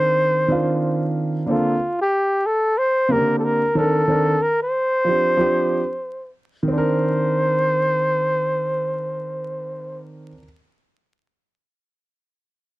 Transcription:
Already playing: D#3 C4 D4 A#4 C5
0.48 D#3 C4 D4 F4
1.46 D3 A#3 C4 F4 A4
2.01 G4
2.46 A4
2.78 C5
3.08 C#3 A#3 C4 G4 A#4
3.15 D3
3.39 A4
3.44 A#4
3.75 D#3 C4 D4 A4 A#4
4.07 D#3 C4 D4 A#4
4.42 A#4
4.63 C5
5.04 F3 C4 D4 G4
5.37 F3 C4 D4 G4
6.63 D#3
6.68 C4 C5
6.73 D4
6.78 A#4

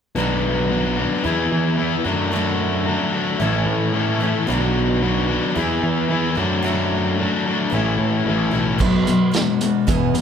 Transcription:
0.15 B1 B2 F#3 B3 D4 F#4
0.70 F#3 B3 D4 F#4
0.97 B3 D4 F#4
1.23 E2 E3 G#3 B3 E4 G#4
1.52 E3
1.77 E3 B3 E4 G#4
2.04 F#2 F#3 A3 D4 E4 F#4
2.32 F#3 A3 D4 F#4
2.37 E4
2.86 F#3 A3 D4 F#4
3.12 A3 D4 F#4
3.39 A1 A2 E3 A3 C#4 E4
3.43 A4
3.66 A2
3.93 A2 E3 A3 C#4 E4
4.20 A3 C#4 E4 A4
4.47 B1 B2 F#3 B3 D4 F#4
5.01 F#3 B3 D4 F#4
5.29 B3 D4 F#4
5.55 E2 E3 G#3 B3 E4 G#4
5.83 E3
6.09 E3 B3 E4 G#4
6.35 F#2 A3 D4 E4 F#4
6.40 F#3
6.63 F#3 A3 D4 F#4
6.68 E4
7.18 F#3 A3 D4 F#4
7.46 A3 D4 F#4
7.73 A1 A2 E3 A3 C#4 E4
7.99 A2
8.26 A1 A2 E3 A3 C#4 E4
8.52 B1 A3 C#4 E4
8.80 B1 B2 F#3 B3 D4 F#4, kick, crash
9.05 B2 F#3 B3 D4 F#4, closed hi-hat
9.31 B2 F#3 B3 D4 F#4, snare, closed hi-hat
9.36 G#3
9.61 B2 G#3 B3 D4 F#4, closed hi-hat
9.87 E2 B2 E3 G#3 B3 G#4, kick, closed hi-hat
10.14 E2 B2 E3 G#3 B3 G#4, closed hi-hat

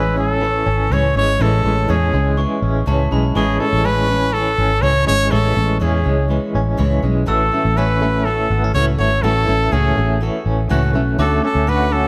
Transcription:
Already playing: A1 A2 E3 G#3 C#4 E4 B4 C#5 E6
0.16 G#3 C#4 E4 A4 C#5
0.42 E3 C#4 E4 C#5
0.66 G#1 C#4
0.90 C#2 A2 E3 G#3 C#4 E4 C#5
1.15 G#1 G#3 C#4 E4 C#5
1.39 A1 A2 E3 G#3 C#4 E4 A4 C#5
1.64 A1 G#3 C#4 E4 C#5
1.88 E2 A2 E3 G#3 C#4 E4 G#4 C#5
2.12 C#2 G#3 C#4 E4 C#5
2.37 E3 G#3 C#4 E4 C#5 C#6
2.62 A1 C#4
2.86 C#2 A2 E3 G#3 C#4 E4 C#5 A5
3.11 B1 G#3 C#4 E4 C#5 B5
3.35 A1 A2 E3 G#3 C#4 E4 G#4 C#5 C#6
3.60 G#3 C#4 E4 A4 C#5
3.73 A1
3.84 A2 E3 G#3 C#4 E4 B4 C#5
4.08 G#3 C#4 E4 C#5
4.33 E3 C#4 E4 A4 C#5
4.58 G#1 C#4
4.82 C#2 A2 E3 G#3 C#4 E4 C#5
5.06 G#1 G#3 C#4 E4 C#5
5.30 A1 A2 E3 G#3 C#4 E4 A4 C#5 C#6
5.54 A1 G#3 C#4 E4 C#5
5.80 E2 A2 E3 G#3 C#4 E4 G#4 C#5
6.03 C#2 G#3 C#4 E4 C#5
6.28 E3 G#3 C#4 E4 C#5
6.54 A1 C#4
6.77 C#2 A2 E3 G#3 C#4 E4 C#5
7.02 B1 G#3 C#4 E4 C#5
7.26 A1 A2 E3 A3 C#4 F#4 A4 E6
7.52 A3 C#4 F#4 A4
7.65 A1
7.77 A2 E3 A3 C#4 F#4 A4 B4
8.01 A3 C#4 F#4 A4
8.25 E3 A3 C#4 F#4 A4
8.50 G#1 B3
8.64 C#4
8.74 C#2 A2 E3 A3 C#4 F#4 A4 C#5
8.98 G#1 A3 C#4 F#4 A4 C#5
9.22 A1 A2 E3 A3 C#4 F#4 A4
9.47 A1 A3 C#4 F#4 A4
9.71 C#2 A2 E3 A3 C#4 F#4 G#4 A4
9.96 A1 A3 C#4 F#4 A4
10.20 E3 A3 C#4 F#4 A4
10.46 A1 C#4
10.69 C#2 A2 E3 A3 C#4 F#4 A4 F#6
10.93 B1 A3 C#4 F#4 A4
11.19 D2 D3 A3 C#4 F#4 A4 D6
11.43 C#4 F#4 A4
11.55 D2
11.67 D3 A3 C#4 F#4 A4 B4
11.91 C#4 F#4 A4

